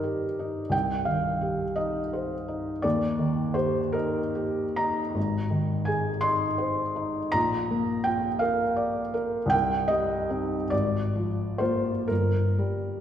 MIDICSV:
0, 0, Header, 1, 2, 480
1, 0, Start_track
1, 0, Key_signature, -3, "major"
1, 0, Tempo, 702576
1, 497, Time_signature, 12, 3, 24, 8
1, 2427, Tempo, 803213
1, 3387, Tempo, 728155
1, 6267, Tempo, 774194
1, 6747, Tempo, 847458
1, 7227, Tempo, 946372
1, 8168, End_track
2, 0, Start_track
2, 0, Title_t, "Felt piano"
2, 0, Program_c, 0, 0
2, 0, Control_c, 0, 64, 127
2, 0, Note_on_c, 0, 43, 43
2, 0, Note_on_c, 0, 51, 34
2, 0, Note_on_c, 0, 63, 41
2, 0, Note_on_c, 0, 67, 36
2, 0, Note_on_c, 0, 70, 60
2, 0, Note_on_c, 0, 72, 61
2, 0, Note_on_c, 0, 74, 66
2, 23, Note_off_c, 0, 67, 0
2, 23, Note_on_c, 0, 67, 40
2, 173, Note_off_c, 0, 63, 0
2, 268, Note_on_c, 0, 63, 37
2, 403, Note_off_c, 0, 67, 0
2, 472, Note_off_c, 0, 43, 0
2, 474, Note_on_c, 0, 36, 48
2, 490, Note_on_c, 0, 79, 76
2, 495, Note_off_c, 0, 70, 0
2, 499, Note_off_c, 0, 63, 0
2, 508, Control_c, 0, 64, 0
2, 509, Note_off_c, 0, 51, 0
2, 509, Note_off_c, 0, 72, 0
2, 515, Note_off_c, 0, 74, 0
2, 604, Control_c, 0, 64, 127
2, 719, Note_on_c, 0, 77, 62
2, 728, Note_off_c, 0, 79, 0
2, 733, Note_on_c, 0, 51, 36
2, 964, Note_on_c, 0, 67, 38
2, 1118, Note_off_c, 0, 51, 0
2, 1200, Note_on_c, 0, 75, 65
2, 1207, Note_off_c, 0, 77, 0
2, 1211, Note_on_c, 0, 63, 40
2, 1354, Note_off_c, 0, 67, 0
2, 1457, Note_on_c, 0, 72, 42
2, 1601, Note_off_c, 0, 63, 0
2, 1696, Note_on_c, 0, 63, 43
2, 1846, Note_off_c, 0, 72, 0
2, 1903, Note_off_c, 0, 36, 0
2, 1929, Note_on_c, 0, 74, 75
2, 1936, Note_off_c, 0, 75, 0
2, 1937, Note_on_c, 0, 39, 52
2, 1940, Note_off_c, 0, 63, 0
2, 1955, Control_c, 0, 64, 0
2, 2045, Control_c, 0, 64, 127
2, 2178, Note_on_c, 0, 51, 40
2, 2419, Note_on_c, 0, 72, 69
2, 2422, Note_off_c, 0, 74, 0
2, 2425, Note_on_c, 0, 67, 44
2, 2561, Note_off_c, 0, 51, 0
2, 2650, Note_on_c, 0, 70, 65
2, 2656, Note_off_c, 0, 72, 0
2, 2657, Note_on_c, 0, 63, 48
2, 2810, Note_off_c, 0, 67, 0
2, 2904, Note_on_c, 0, 67, 47
2, 3066, Note_off_c, 0, 63, 0
2, 3151, Note_on_c, 0, 82, 78
2, 3158, Note_off_c, 0, 70, 0
2, 3159, Note_on_c, 0, 63, 45
2, 3295, Note_off_c, 0, 67, 0
2, 3362, Note_off_c, 0, 39, 0
2, 3379, Note_on_c, 0, 32, 53
2, 3386, Note_off_c, 0, 63, 0
2, 3400, Control_c, 0, 64, 0
2, 3516, Control_c, 0, 64, 127
2, 3612, Note_on_c, 0, 51, 43
2, 3844, Note_on_c, 0, 80, 66
2, 3854, Note_on_c, 0, 68, 50
2, 3859, Note_off_c, 0, 82, 0
2, 4001, Note_off_c, 0, 51, 0
2, 4079, Note_on_c, 0, 84, 82
2, 4090, Note_on_c, 0, 63, 51
2, 4093, Note_off_c, 0, 80, 0
2, 4240, Note_off_c, 0, 68, 0
2, 4325, Note_on_c, 0, 72, 49
2, 4480, Note_off_c, 0, 63, 0
2, 4574, Note_on_c, 0, 63, 49
2, 4723, Note_off_c, 0, 72, 0
2, 4798, Note_off_c, 0, 32, 0
2, 4809, Note_on_c, 0, 82, 95
2, 4817, Note_off_c, 0, 84, 0
2, 4821, Note_on_c, 0, 34, 60
2, 4824, Note_off_c, 0, 63, 0
2, 4842, Control_c, 0, 64, 0
2, 4931, Control_c, 0, 64, 127
2, 5067, Note_on_c, 0, 58, 43
2, 5285, Note_on_c, 0, 79, 85
2, 5294, Note_on_c, 0, 65, 46
2, 5297, Note_off_c, 0, 82, 0
2, 5444, Note_off_c, 0, 58, 0
2, 5518, Note_on_c, 0, 77, 70
2, 5528, Note_off_c, 0, 79, 0
2, 5531, Note_on_c, 0, 70, 52
2, 5673, Note_off_c, 0, 65, 0
2, 5764, Note_on_c, 0, 74, 53
2, 5917, Note_off_c, 0, 70, 0
2, 6010, Note_off_c, 0, 77, 0
2, 6010, Note_on_c, 0, 70, 50
2, 6164, Note_off_c, 0, 74, 0
2, 6221, Note_on_c, 0, 36, 60
2, 6238, Note_off_c, 0, 34, 0
2, 6247, Note_on_c, 0, 79, 97
2, 6263, Note_off_c, 0, 70, 0
2, 6280, Control_c, 0, 64, 0
2, 6370, Control_c, 0, 64, 127
2, 6484, Note_on_c, 0, 75, 88
2, 6494, Note_off_c, 0, 79, 0
2, 6497, Note_on_c, 0, 55, 47
2, 6744, Note_on_c, 0, 60, 41
2, 6749, Note_on_c, 0, 63, 46
2, 6884, Note_off_c, 0, 55, 0
2, 6941, Note_off_c, 0, 36, 0
2, 6957, Note_off_c, 0, 60, 0
2, 6960, Note_off_c, 0, 63, 0
2, 6972, Note_off_c, 0, 75, 0
2, 6974, Note_on_c, 0, 74, 78
2, 6981, Note_on_c, 0, 32, 51
2, 6994, Control_c, 0, 64, 0
2, 7110, Control_c, 0, 64, 127
2, 7230, Note_on_c, 0, 53, 43
2, 7447, Note_on_c, 0, 72, 74
2, 7457, Note_off_c, 0, 74, 0
2, 7457, Note_on_c, 0, 58, 44
2, 7457, Note_on_c, 0, 65, 44
2, 7607, Note_off_c, 0, 53, 0
2, 7683, Note_off_c, 0, 58, 0
2, 7683, Note_off_c, 0, 65, 0
2, 7685, Note_off_c, 0, 32, 0
2, 7697, Note_on_c, 0, 70, 67
2, 7699, Note_off_c, 0, 72, 0
2, 7707, Note_on_c, 0, 31, 49
2, 7717, Control_c, 0, 64, 0
2, 7806, Control_c, 0, 64, 127
2, 7954, Note_on_c, 0, 55, 38
2, 8168, Note_off_c, 0, 31, 0
2, 8168, Note_off_c, 0, 55, 0
2, 8168, Note_off_c, 0, 70, 0
2, 8168, End_track
0, 0, End_of_file